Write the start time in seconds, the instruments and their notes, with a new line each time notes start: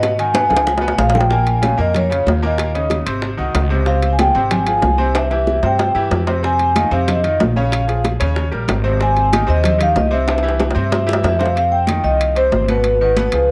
Already playing: upright bass G#2, grand piano B2 B3 B4, vibraphone D#5
0.03 high bongo, high conga, high timbale
0.18 grand piano D#3 D#4 F#4, vibraphone G#5, high conga, high timbale
0.34 grand piano B2 B3 B4, high bongo, high conga, high timbale
0.49 upright bass C#2, grand piano F3 F4 G#4, low bongo, high conga
0.57 high timbale
0.67 low bongo, high conga, low timbale
0.78 grand piano B2 B3 B4, low timbale
0.83 high conga
0.88 low timbale
0.98 upright bass A#1, grand piano F3 F4 G#4, vibraphone F5, low bongo, low timbale
1.10 low timbale
1.15 vibraphone G5, low bongo, high conga
1.21 low timbale
1.30 grand piano A#2 A#3 A#4, vibraphone G#5, high bongo, high conga
1.47 high bongo, high conga, high timbale
1.62 grand piano C#3 C#4 F4, high bongo, high conga, high timbale, low timbale
1.77 upright bass F2, grand piano A#2 A#3 A#4, vibraphone D#5, high bongo
1.94 vibraphone C#5, high bongo, high conga, low conga, high timbale
2.10 grand piano C#3 C#4 F4, high bongo, high conga, high timbale
2.26 upright bass D#2, high bongo, low bongo, high conga, low timbale
2.42 grand piano A#2 A#3 A#4, high conga
2.46 vibraphone D#5
2.58 high bongo, high conga, high timbale
2.75 grand piano C#3 C#4 D#4, high bongo, high conga, high timbale
2.90 high bongo, high conga, high timbale, low timbale
3.06 upright bass G#1, grand piano C3 C4 C5, high bongo, high conga, high timbale
3.22 high bongo, high conga
3.37 upright bass C2, grand piano D#3 D#4 F#4, high bongo, high conga
3.55 upright bass C#2, high bongo, low bongo, high conga, high timbale, low timbale
3.70 grand piano C3 C4 C5, high conga
3.86 grand piano C3 C4 C5, vibraphone F5, high bongo, high conga
4.03 high bongo, high conga, high timbale
4.13 vibraphone G#5
4.19 grand piano F3 F4 G#4, vibraphone G5, high bongo, high conga, high timbale, low timbale
4.35 upright bass G#1, grand piano C3 C4 C5, high bongo
4.51 vibraphone G#5, high bongo, high conga, low conga, high timbale
4.67 grand piano F3 F4 G#4, high bongo, high conga, high timbale
4.82 upright bass C2, high bongo, low bongo, high conga, low timbale
4.98 grand piano C3 C4 C5, high conga
5.15 vibraphone E5, high bongo, high conga, high timbale
5.30 grand piano E3 E4 G4, high bongo, high conga, high timbale
5.47 high bongo, high conga
5.62 upright bass G2, grand piano C3 C4 C5, vibraphone G5, high bongo, high conga, low timbale
5.78 high bongo, high conga, low timbale
5.95 upright bass G2, grand piano E3 E4 G4, high bongo, high conga
6.11 upright bass F2, high bongo, low bongo, high conga, low timbale
6.27 grand piano C3 C4 C5, high conga, low timbale
6.43 grand piano C3 C4 C5, vibraphone G#5, high bongo, high conga
6.59 high bongo, high conga, high timbale
6.76 grand piano D#3 D#4 F4, high bongo, high conga, high timbale, low timbale
6.91 upright bass F2, grand piano C3 C4 C5, vibraphone F5, high bongo
7.08 vibraphone D#5, high bongo, high conga, low conga, high timbale
7.24 grand piano D#3 D#4 F4, high bongo, high conga, high timbale
7.40 upright bass A#1, high bongo, low bongo, high conga, low timbale
7.56 grand piano C#3 C#4 C#5, vibraphone F5, high conga
7.72 high bongo, high conga, high timbale
7.88 grand piano F3 F4 G#4, high bongo, high conga, high timbale
8.04 high bongo, high conga, high timbale, low timbale
8.20 upright bass D#2, grand piano C#3 C#4 C#5, high bongo, high conga, high timbale
8.36 high bongo, high conga
8.52 upright bass A#1, grand piano G3 G4 A#4, high bongo, high conga
8.68 upright bass G#1, high bongo, low bongo, high conga, high timbale, low timbale
8.84 grand piano C3 C4 C5, high conga
9.00 grand piano C3 C4 C5, vibraphone G#5, high bongo, high conga
9.17 high bongo, high conga, high timbale
9.33 grand piano D#3 D#4 G4, high bongo, high conga, high timbale, low timbale
9.47 upright bass D#2, grand piano C3 C4 C5, vibraphone D#5, high bongo
9.64 high bongo, high conga, low conga, high timbale
9.78 grand piano D#3 D#4 G4, high bongo, high conga, low conga, high timbale
9.83 vibraphone F5
9.96 upright bass C2, vibraphone D#5, high bongo, low bongo, high conga, low timbale
10.11 grand piano C3 C4 C5, vibraphone E5, high conga
10.28 high bongo, high conga, high timbale
10.38 high timbale
10.43 grand piano E3 E4 G4, high bongo, high conga
10.49 high timbale
10.60 high bongo, high conga, high timbale
10.71 grand piano C3, low timbale
10.75 upright bass G2, grand piano C4 C5, high bongo, high conga
10.92 high bongo, high conga, low timbale
11.06 grand piano E3 E4 G4, high bongo, high conga
11.13 low timbale
11.24 upright bass F2, vibraphone E5, low bongo, high conga, low timbale
11.39 grand piano C3 C4 C5, vibraphone F5, low bongo, high conga
11.46 low timbale
11.56 grand piano C3 C4 C5, vibraphone F5, high conga, high timbale
11.71 vibraphone G5, high conga
11.87 grand piano D#3 D#4 F4, high conga, high timbale, low timbale
12.04 upright bass C2, grand piano D#3 D#4 F4, vibraphone D#5, high conga
12.20 high conga, high timbale
12.35 grand piano C3 C4 C5, vibraphone C5, high conga, high timbale
12.52 upright bass G#1, high conga, low timbale
12.68 grand piano B2 B3 B4, vibraphone B4, high conga, high timbale
12.84 high conga, high timbale
13.01 grand piano D#3 D#4 F#4, vibraphone B4, high conga
13.16 grand piano B2 B3 B4, high conga, high timbale, low timbale
13.32 upright bass C#2, grand piano F3 F4 G#4, high conga, high timbale